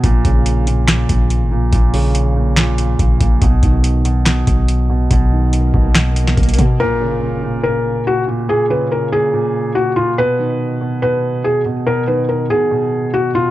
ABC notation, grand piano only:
X:1
M:4/4
L:1/8
Q:1/4=142
K:Bbphr
V:1 name="Grand piano" clef=bass
B,, D,2 B,, B,,3 B,, | B,, D,2 B,, B,,3 B,, | =B,, ^D,2 B,, B,,3 B,, | =B,, ^D,2 B,, B,,3 B,, |
B,, D,2 B,, B,,3 B,, | B,, D,2 B,, B,,3 B,, | =B,, ^D,2 B,, B,,3 B,, | =B,, ^D,2 B,, B,,3 B,, |]